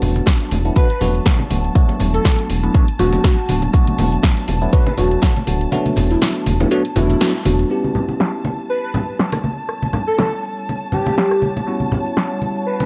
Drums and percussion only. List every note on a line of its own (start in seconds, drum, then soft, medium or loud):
0.02 open hi-hat medium
0.02 open hi-hat loud
0.02 low conga medium
0.15 closed hi-hat soft
0.15 muted conga medium
0.26 kick loud
0.26 snare loud
0.26 closed hi-hat medium
0.40 snare medium
0.40 closed hi-hat medium
0.51 closed hi-hat medium
0.51 open hi-hat loud
0.51 muted conga medium
0.65 closed hi-hat soft
0.76 kick loud
0.76 closed hi-hat medium
0.90 closed hi-hat soft
1.01 snare soft
1.01 closed hi-hat medium
1.01 open hi-hat loud
1.01 muted conga soft
1.01 low conga medium
1.15 closed hi-hat soft
1.26 kick loud
1.26 snare loud
1.26 closed hi-hat medium
1.39 closed hi-hat soft
1.39 muted conga medium
1.50 closed hi-hat medium
1.50 open hi-hat loud
1.50 high conga medium
1.64 closed hi-hat soft
1.75 kick loud
1.75 closed hi-hat medium
1.88 closed hi-hat medium
1.88 muted conga medium
1.88 high conga medium
2.00 closed hi-hat medium
2.00 open hi-hat loud
2.00 low conga medium
2.14 closed hi-hat soft
2.25 kick loud
2.25 snare loud
2.25 closed hi-hat medium
2.25 muted conga medium
2.39 closed hi-hat medium
2.50 snare soft
2.50 closed hi-hat medium
2.50 open hi-hat loud
2.63 closed hi-hat soft
2.74 kick loud
2.74 closed hi-hat medium
2.74 muted conga medium
2.88 closed hi-hat medium
2.99 closed hi-hat medium
2.99 open hi-hat loud
2.99 low conga medium
3.13 closed hi-hat soft
3.13 muted conga medium
3.24 kick loud
3.24 snare loud
3.24 closed hi-hat medium
3.38 closed hi-hat medium
3.49 snare soft
3.49 closed hi-hat medium
3.49 open hi-hat loud
3.49 high conga medium
3.62 closed hi-hat soft
3.62 muted conga soft
3.73 kick loud
3.73 closed hi-hat medium
3.87 closed hi-hat medium
3.87 high conga medium
3.98 open hi-hat medium
3.98 open hi-hat loud
3.98 muted conga medium
3.98 low conga medium
4.12 closed hi-hat soft
4.23 kick loud
4.23 snare loud
4.23 closed hi-hat medium
4.37 snare medium
4.37 closed hi-hat medium
4.48 closed hi-hat medium
4.48 open hi-hat loud
4.48 muted conga medium
4.62 closed hi-hat soft
4.73 kick loud
4.73 closed hi-hat medium
4.87 closed hi-hat medium
4.87 muted conga medium
4.98 snare soft
4.98 closed hi-hat medium
4.98 open hi-hat loud
4.98 low conga medium
5.11 closed hi-hat soft
5.22 kick loud
5.22 snare loud
5.22 closed hi-hat medium
5.36 closed hi-hat medium
5.36 closed hi-hat soft
5.36 muted conga medium
5.47 closed hi-hat medium
5.47 open hi-hat loud
5.47 high conga medium
5.61 closed hi-hat soft
5.72 closed hi-hat medium
5.72 muted conga medium
5.86 closed hi-hat medium
5.86 high conga medium
5.96 snare medium
5.96 closed hi-hat medium
5.96 open hi-hat loud
5.96 low conga medium
6.11 snare soft
6.11 closed hi-hat soft
6.22 snare loud
6.22 closed hi-hat medium
6.22 muted conga medium
6.35 closed hi-hat soft
6.35 closed hi-hat medium
6.46 closed hi-hat medium
6.46 open hi-hat loud
6.46 high conga medium
6.60 closed hi-hat soft
6.60 muted conga medium
6.71 closed hi-hat medium
6.85 closed hi-hat medium
6.96 closed hi-hat medium
6.96 open hi-hat loud
6.96 high conga medium
6.96 low conga loud
7.10 closed hi-hat soft
7.10 muted conga medium
7.21 snare loud
7.21 closed hi-hat medium
7.34 closed hi-hat medium
7.45 snare soft
7.45 closed hi-hat medium
7.45 open hi-hat loud
7.45 muted conga medium
7.45 high conga medium
7.59 closed hi-hat soft
7.70 shaker soft
7.84 high conga medium
7.95 low conga medium
7.95 shaker medium
8.09 muted conga soft
8.20 snare loud
8.20 shaker soft
8.45 muted conga medium
8.45 shaker medium
8.58 shaker soft
8.94 muted conga medium
8.94 low conga loud
8.94 shaker medium
9.08 shaker soft
9.19 snare loud
9.32 cross-stick medium
9.32 muted conga medium
9.44 high conga medium
9.44 shaker medium
9.58 shaker soft
9.69 cross-stick medium
9.69 shaker soft
9.82 muted conga soft
9.82 high conga medium
9.93 cross-stick medium
9.93 low conga medium
9.93 shaker medium
10.07 shaker soft
10.18 snare loud
10.18 muted conga medium
10.43 shaker medium
10.57 shaker soft
10.68 muted conga medium
10.68 shaker soft
10.92 high conga medium
10.92 low conga medium
10.92 shaker medium
11.06 muted conga medium
11.18 snare loud
11.18 shaker soft
11.31 cross-stick medium
11.42 high conga medium
11.42 shaker medium
11.57 muted conga soft
11.67 shaker soft
11.80 high conga medium
11.92 muted conga medium
11.92 low conga medium
11.92 shaker medium
12.06 shaker soft
12.17 snare loud
12.41 muted conga soft
12.41 shaker medium
12.55 shaker soft
12.66 shaker soft
12.80 muted conga medium